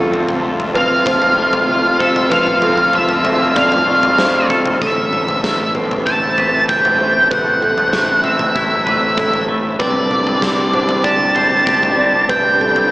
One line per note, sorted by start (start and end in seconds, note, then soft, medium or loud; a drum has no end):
0.00 2.28 F2 medium
0.00 4.77 C3 medium
0.00 1.38 F3 medium
0.00 4.77 A3 soft
0.00 4.77 F4 medium
0.00 0.44 A4 medium
0.00 2.00 A4 medium
0.12 0.74 C4 medium
0.12 floor tom medium
0.29 floor tom medium
0.43 1.37 A3 medium
0.60 floor tom medium
0.74 2.62 C4 medium
0.74 1.07 B4 medium
0.74 2.01 F5 medium
0.74 floor tom medium
1.06 1.67 F4 medium
1.06 1.69 C5 medium
1.06 kick medium
1.06 floor tom medium
1.22 floor tom medium
1.37 2.92 A3 medium
1.53 floor tom medium
1.68 3.25 F4 medium
1.99 3.56 A4 medium
1.99 2.31 C5 medium
1.99 2.31 E5 medium
1.99 kick medium
2.16 floor tom medium
2.30 4.77 F2 medium
2.30 3.87 F3 medium
2.30 2.62 B4 medium
2.30 2.95 F5 medium
2.30 kick medium
2.30 floor tom medium
2.47 mid tom medium
2.62 3.23 C4 medium
2.62 3.25 A4 medium
2.62 floor tom medium
2.77 floor tom medium
2.93 3.85 A3 medium
2.93 3.53 E5 medium
2.93 floor tom medium
3.09 floor tom medium
3.24 4.81 C4 medium
3.24 3.56 E5 medium
3.24 floor tom medium
3.55 4.18 F4 medium
3.55 4.18 D5 medium
3.55 4.46 F5 medium
3.55 kick medium
3.55 floor tom medium
3.55 mid tom medium
3.72 floor tom medium
3.72 mid tom medium
3.87 4.81 A3 medium
4.03 floor tom medium
4.18 4.81 F4 medium
4.18 4.81 C5 medium
4.18 snare medium
4.50 4.81 A4 medium
4.50 kick medium
4.66 floor tom medium
4.79 7.27 A1 medium
4.79 6.37 A2 soft
4.79 9.76 C3 soft
4.79 9.75 A3 soft
4.79 9.75 C4 medium
4.79 5.44 A4 medium
4.79 5.71 E5 medium
4.79 kick medium
4.79 floor tom medium
5.13 mid tom soft
5.28 floor tom medium
5.44 6.98 A3 soft
5.44 kick medium
5.44 snare soft
5.75 8.23 C4 soft
5.75 6.06 B4 soft
5.75 mid tom soft
5.91 floor tom medium
6.06 6.68 E4 soft
6.06 6.64 A5 medium
6.06 kick medium
6.38 7.93 B4 soft
6.38 floor tom medium
6.69 8.24 E4 soft
6.69 7.27 G5 medium
6.69 kick medium
6.85 floor tom medium
6.99 7.92 A3 soft
6.99 7.31 C5 medium
7.31 9.76 A1 soft
7.31 8.87 A2 soft
7.31 7.62 B4 medium
7.31 8.27 F#5 medium
7.31 kick medium
7.31 floor tom medium
7.61 8.24 A4 medium
7.61 mid tom soft
7.78 floor tom medium
7.93 9.47 A3 soft
7.93 kick medium
7.93 snare soft
8.23 9.80 C4 soft
8.23 8.55 E5 soft
8.23 9.45 E5 medium
8.23 mid tom soft
8.39 floor tom medium
8.39 mid tom medium
8.55 9.16 E4 soft
8.55 kick medium
8.86 9.80 B4 medium
8.86 floor tom medium
9.17 9.80 E4 soft
9.17 9.80 A4 medium
9.17 kick medium
9.17 mid tom medium
9.33 floor tom medium
9.49 9.79 A3 soft
9.79 12.26 C2 medium
9.79 12.91 C3 medium
9.79 12.27 G3 soft
9.79 10.42 C4 soft
9.79 12.91 D4 medium
9.79 10.42 B4 medium
9.79 11.08 D5 medium
9.79 kick medium
9.79 floor tom medium
10.11 mid tom soft
10.27 floor tom soft
10.42 11.96 C4 soft
10.42 kick medium
10.42 snare soft
10.73 12.30 D4 soft
10.73 11.04 C5 medium
10.73 mid tom medium
10.89 floor tom medium
11.04 11.64 G4 soft
11.04 11.67 D5 medium
11.04 12.29 A5 medium
11.04 kick medium
11.35 12.91 C5 medium
11.35 floor tom medium
11.65 12.91 G4 soft
11.65 kick medium
11.83 floor tom medium
11.96 12.27 C4 medium
11.96 12.29 D5 medium
12.29 12.91 C2 medium
12.29 12.91 G3 medium
12.29 12.89 C4 medium
12.29 12.60 B4 medium
12.29 12.91 G5 medium
12.29 kick medium
12.29 floor tom medium
12.60 12.91 A4 medium
12.60 mid tom medium
12.76 floor tom medium